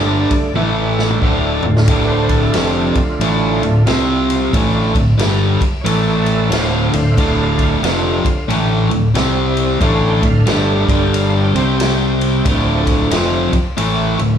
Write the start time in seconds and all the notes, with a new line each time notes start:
Already playing: G1 G2 D3 G3 A3 D4 D5
0.30 muted fingered electric bass stroke, muted overdriven electric guitar stroke, kick, ride
0.54 A1 A2 E3 A3 E4, high tom
0.99 snare
1.11 mid tom
1.22 D1 D2 A2 D3 A3 D4 C5, kick
1.44 A4
1.63 D1 D2 A2 F4, floor tom
1.77 snare
1.88 D1 D2 A2 D3 G4, kick, ride
2.05 B4
2.10 C5
2.29 A4, kick, ride
2.50 F4, ride
2.55 F1 F2 C3 F3, snare
2.72 G4
2.95 F4, muted fingered electric bass stroke, muted overdriven electric guitar stroke, kick, ride
3.19 A1 A2 E3 A3, ride
3.61 D1 D2 A2, ride
3.85 C2 C3 G3 C4, snare, ride
4.30 ride
4.52 A1 A2 D3 E3 A3 D4, kick, ride
4.94 D1 D2 A2, kick, ride
5.18 G1 G2 D3 G3, snare, ride
5.61 muted overdriven electric guitar stroke, kick, ride
5.81 A1 A2 E3 A4 C#5 D5
5.85 E3 A3 E4, ride
6.08 A4 D5
6.26 A4 D5, ride
6.50 D1 D2 A2 D3 C5 F5, snare, ride
6.70 C5 F5
6.89 D3 A3 D4
6.93 D1 D2 A2 C5 F5, ride
7.11 E5
7.16 D1 D2 A2 D3 F5, kick, ride
7.59 kick, ride
7.80 F1 F2 C3 F3 A3 D4, ride
7.85 F3, snare
8.25 muted fingered electric bass stroke, muted overdriven electric guitar stroke, kick, ride
8.48 A1 A2 E3 A3, ride
8.90 D1 D2 A2, ride
9.13 C2 C3 G3 C4, snare, ride
9.57 ride
9.80 A1 A2 D3 E3 A3 D4 F5, kick, ride
10.05 G5
10.22 D1 D2 A2 E5, kick, ride
10.26 F5
10.46 G1 G2 D3 G3 G5, snare, ride
10.67 E5
10.72 F5
10.88 G1 G2 D3 G3 D4, kick, ride
10.93 G5
11.12 F5, ride
11.38 G5
11.53 C2 C3 G3 C4, ride
11.58 G5
11.80 snare, ride
12.21 ride
12.44 D1 D2 A2 D3 F3 A3, kick, ride
12.87 kick, ride
13.11 F1 F2 C3 F3, snare, ride
13.53 muted overdriven electric guitar stroke, kick, ride
13.77 A1 A2 E3 A3, ride
14.18 D1 D2 A2, ride